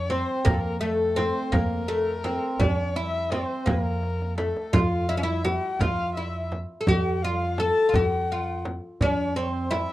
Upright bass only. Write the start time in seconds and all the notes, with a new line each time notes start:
Already playing: F2
0.46 F2
1.53 F2
2.60 F2
3.67 F2
4.73 F2
5.79 F2
6.87 F2
7.94 F2
9.01 F2